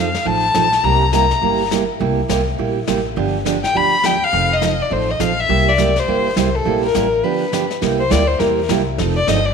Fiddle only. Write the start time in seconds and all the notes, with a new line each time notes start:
Already playing: F5
0.26 A5
0.84 A#5
1.14 A#5
3.64 G5
3.77 B5
4.05 G5
4.24 F5
4.53 D#5
4.82 D5
4.92 C5
5.10 D#5
5.21 F5
5.40 E5
5.69 D5
5.99 C5
6.38 C5
6.55 A4
6.85 A#4
7.24 B4
8.00 C5
8.11 D5
8.27 C5
8.39 A#4
9.16 D5
9.28 D#5
9.45 D5